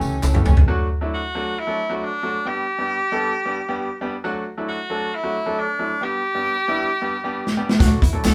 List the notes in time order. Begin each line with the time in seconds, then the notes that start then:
Already playing: E3 A3 C#4 E4 G4 A4 C#5
0.01 C#2, tambourine
0.23 C#2 C#4 E4 A4, clap, tambourine
0.34 E3 A3 C#4 G4, mid tom
0.45 C#2 C#4, floor tom, tambourine
0.57 floor tom
0.68 F#3 A3 D4 F#4
1.01 F#3 A3 D4 E4
1.14 F#4
1.35 F#3 A3 D4 F#4
1.59 E4
1.67 F#3 A3 D4 A4
1.89 F#3 A3 D4 F#4
1.95 E4
2.04 D4
2.23 F#3 A3 D4 F#4
2.45 G3 B3 D4 G4
2.78 G3 B3 D4 G4
3.12 G3 B3 D4 A4
3.45 G3 B3 D4 G4
3.68 G3 B3 D4 G4
4.01 G3 B3 D4 G4
4.24 F#3 A3 D4 F#4
4.58 F#3 A3 D4 E4
4.69 F#4
4.90 F#3 A3 D4 A4
5.15 E4
5.23 F#3 A3 D4 F#4
5.46 F#3 A3 D4 A4
5.59 D4
5.79 F#3 A3 D4 E4
6.01 G3 B3 D4 G4
6.35 G3 B3 D4 G4
6.68 G3 B3 D4 E4
7.01 G3 B3 D4 G4
7.24 G3 B3 D4 G4
7.47 snare
7.57 G3 B3 D4 G4
7.69 snare
7.79 D2 F#3 A3 D4 F#4, kick, snare, closed hi-hat, tambourine
8.02 E2 E4, kick, closed hi-hat, tambourine
8.13 F#3 A3 D4 A4
8.24 D2 D4 F#4 A4, snare, clap, closed hi-hat, tambourine